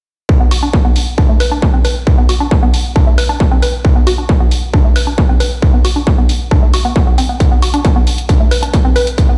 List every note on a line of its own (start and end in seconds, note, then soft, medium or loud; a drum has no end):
0.29 kick loud
0.40 0.47 B3 medium
0.51 0.58 F#4 medium
0.51 open hi-hat loud
0.63 0.69 D4 medium
0.73 kick loud
0.85 0.89 B3 medium
0.96 open hi-hat medium
1.18 1.28 D4 medium
1.18 kick loud
1.29 1.36 A3 medium
1.40 1.47 B4 medium
1.40 open hi-hat loud
1.52 1.58 D4 medium
1.62 kick loud
1.74 1.78 C4 medium
1.85 1.92 B4 medium
1.85 open hi-hat medium
2.07 kick loud
2.18 2.25 B3 medium
2.29 2.36 F#4 medium
2.29 open hi-hat loud
2.40 2.47 D4 medium
2.51 kick loud
2.63 2.67 B3 medium
2.74 open hi-hat medium
2.96 3.06 D4 medium
2.96 kick loud
3.07 3.14 A3 medium
3.18 3.25 B4 medium
3.18 open hi-hat loud
3.29 3.36 D4 medium
3.40 kick loud
3.52 3.56 C4 medium
3.62 3.69 B4 medium
3.62 open hi-hat medium
3.85 kick loud
3.96 4.03 B3 medium
4.07 4.14 F#4 medium
4.07 open hi-hat loud
4.18 4.25 D4 medium
4.29 kick loud
4.40 4.44 B3 medium
4.51 open hi-hat medium
4.74 4.84 D4 medium
4.74 kick loud
4.85 4.92 A3 medium
4.96 5.03 B4 medium
4.96 open hi-hat loud
5.07 5.14 D4 medium
5.18 kick loud
5.29 5.33 C4 medium
5.40 5.47 B4 medium
5.40 open hi-hat medium
5.62 kick loud
5.74 5.81 B3 medium
5.85 5.92 F#4 medium
5.85 open hi-hat loud
5.96 6.03 D4 medium
6.07 kick loud
6.18 6.22 B3 medium
6.29 open hi-hat medium
6.51 6.62 D4 medium
6.51 kick loud
6.63 6.69 A3 medium
6.74 6.81 F#4 medium
6.74 open hi-hat loud
6.85 6.92 B3 medium
6.96 kick loud
7.07 7.14 B3 medium
7.18 7.22 C4 medium
7.18 open hi-hat medium
7.29 7.36 B3 medium
7.40 kick loud
7.40 closed hi-hat medium
7.52 7.58 B3 medium
7.62 7.69 F#4 medium
7.62 open hi-hat loud
7.74 7.81 D4 medium
7.74 closed hi-hat medium
7.85 kick loud
7.85 closed hi-hat medium
7.96 8.00 B3 medium
8.07 open hi-hat medium
8.18 closed hi-hat medium
8.29 8.40 D4 medium
8.29 kick loud
8.29 closed hi-hat medium
8.40 8.47 A3 medium
8.51 8.58 B4 medium
8.51 open hi-hat loud
8.63 8.69 D4 medium
8.63 closed hi-hat medium
8.74 kick loud
8.74 closed hi-hat medium
8.85 8.89 C4 medium
8.96 9.03 B4 medium
8.96 open hi-hat medium
9.07 closed hi-hat medium
9.18 kick loud
9.18 closed hi-hat medium
9.29 9.36 B3 medium